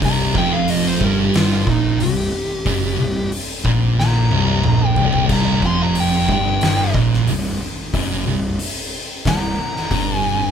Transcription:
0.02 C1 C2 A#5, kick, open hi-hat
0.35 F1 F2 G5, kick
0.53 F5
0.68 D#5, open hi-hat
0.87 C5
1.00 G1 G2 A#4, kick
1.20 G4
1.34 F4, snare, open hi-hat
1.53 F4
1.67 A#1 A#2 D#4, kick
2.00 C1 C2 G4, open hi-hat
2.65 F#1 F#2, kick, open hi-hat
2.99 C1 C2
3.32 open hi-hat
3.64 A#1 A#2, kick
4.00 A#5, snare
4.31 C1 C2, high tom
4.47 high tom
4.64 A#1 A#2, mid tom
4.88 G5
4.96 C1 C2, floor tom
5.13 floor tom
5.29 C1 C2 A#5, kick, crash
5.62 F1 F2, kick
5.66 C6
5.83 A#5
5.95 open hi-hat
6.00 G5
6.28 G1 G2, kick
6.33 G5
6.61 snare, open hi-hat
6.94 A#1 A#2, kick
7.13 snare
7.27 C1 C2, open hi-hat
7.94 F#1 F#2, kick, open hi-hat
8.26 C1 C2
8.59 open hi-hat
9.25 C1 C2 A#5, kick, snare, open hi-hat
9.76 snare
9.91 G1 G2, kick, open hi-hat
10.18 G#5

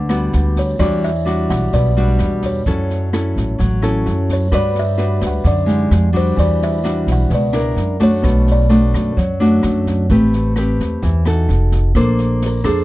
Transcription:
Already playing: D2 D3
0.09 G3 B3 F#4, cross-stick, snare
0.33 D2, snare
0.56 C#5, kick, snare
0.79 E2 E3 G3 D4 F#4 D5, kick, cross-stick, snare
1.03 E5, snare
1.25 G3 D4 F#4, snare
1.50 B1 F#5, kick, cross-stick, snare
1.73 B1 B2 D5, kick, snare
1.97 G3 D4 F#4, snare
2.19 E2, cross-stick, snare
2.42 C#5, kick, snare
2.66 F#2 F#3 C#4 E4 A4, kick, snare
2.90 snare
3.13 C#4 E4 A4, cross-stick, snare
3.36 A1, kick, snare
3.59 A1 F#3, kick, snare
3.82 C#4 E4 A4, cross-stick, snare
4.06 F#2, snare
4.29 kick, snare
4.33 C#5
4.51 G2 G3 D4 F#4 B4 D5, kick, cross-stick, snare
4.75 snare
4.79 E5
4.98 D4 F#4 B4, snare
5.21 D2, kick, cross-stick, snare
5.27 F#5
5.44 F#2 D3 D5, kick, snare
5.66 G#3 D#4 G4, snare
5.91 F2, cross-stick, snare
6.13 G3 D4 F#4 C5, kick, snare
6.36 E2 E3 D5, kick, snare
6.62 E5, snare
6.83 G3 D4 F#4, cross-stick, snare
7.07 B1, kick, snare
7.12 F#5
7.30 C#2 B2, kick, snare
7.35 D5
7.53 D4 E4 A#4, cross-stick, snare
7.76 F#2, snare
8.00 A3 D4 F#4 C#5, kick, snare
8.22 B1 B2, kick, cross-stick, snare
8.47 snare
8.52 D5
8.69 A3 D4 F#4, snare
8.94 F#2, kick, cross-stick, snare
9.17 F#2 F#3, kick, snare
9.40 A3 D4 F#4, snare
9.63 F#2, cross-stick, snare
9.86 kick, snare
10.09 A1 A3 C4 G4 B4, kick, snare
10.33 snare
10.56 C4 G4 B4, cross-stick, snare
10.79 E2, kick, snare
11.02 E2 E3, kick, snare
11.26 D#4 F#4 A4, cross-stick, snare
11.49 F1, snare
11.72 kick, snare
11.95 A#1 A#3 D4 A4 C5, kick, cross-stick, snare
12.18 snare
12.42 snare
12.46 A#4
12.64 F2 D4 G#4 A4 C5, kick, cross-stick, snare

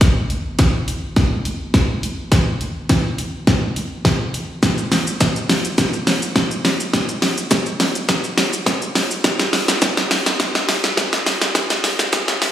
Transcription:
0.01 kick, snare, closed hi-hat
0.30 closed hi-hat
0.59 kick, snare, closed hi-hat
0.88 closed hi-hat
1.16 kick, snare, closed hi-hat
1.45 closed hi-hat
1.74 kick, snare, closed hi-hat
2.03 closed hi-hat
2.32 kick, snare, closed hi-hat
2.61 closed hi-hat
2.89 kick, snare, closed hi-hat
3.18 closed hi-hat
3.47 kick, snare, closed hi-hat
3.76 closed hi-hat
4.05 kick, snare, closed hi-hat
4.34 closed hi-hat
4.63 kick, snare, closed hi-hat, shaker
4.78 shaker
4.92 snare, open hi-hat, shaker
5.07 shaker
5.20 kick, snare, closed hi-hat, shaker
5.36 shaker
5.50 snare, open hi-hat, shaker
5.65 shaker
5.78 kick, snare, closed hi-hat, shaker
5.93 shaker
6.07 snare, open hi-hat, shaker
6.22 shaker
6.36 kick, snare, closed hi-hat, shaker
6.51 shaker
6.65 snare, open hi-hat, shaker
6.80 shaker
6.93 kick, snare, closed hi-hat, shaker
7.09 shaker
7.22 snare, open hi-hat, shaker
7.38 shaker
7.51 kick, snare, closed hi-hat, shaker
7.66 shaker
7.80 snare, open hi-hat, shaker
7.95 shaker
8.09 kick, snare, closed hi-hat, shaker
8.24 shaker
8.38 snare, open hi-hat, shaker
8.53 shaker
8.66 kick, snare, closed hi-hat, shaker
8.82 shaker
8.95 snare, open hi-hat, shaker
9.11 shaker
9.24 kick, snare, closed hi-hat, shaker
9.39 snare, shaker
9.53 snare, open hi-hat, shaker
9.68 snare, shaker
9.82 kick, snare, closed hi-hat, shaker
9.97 snare, shaker
10.11 snare, open hi-hat, shaker
10.26 snare, shaker
10.40 kick, snare, closed hi-hat, shaker
10.55 snare, shaker
10.69 snare, open hi-hat, shaker
10.84 snare, shaker
10.97 kick, snare, closed hi-hat, shaker
11.13 snare, shaker
11.26 snare, open hi-hat, shaker
11.41 snare, shaker
11.55 kick, snare, closed hi-hat, shaker
11.70 snare, shaker
11.84 snare, open hi-hat, shaker
11.99 snare, shaker
12.13 kick, snare, closed hi-hat, shaker
12.28 snare, shaker
12.42 snare, open hi-hat, shaker

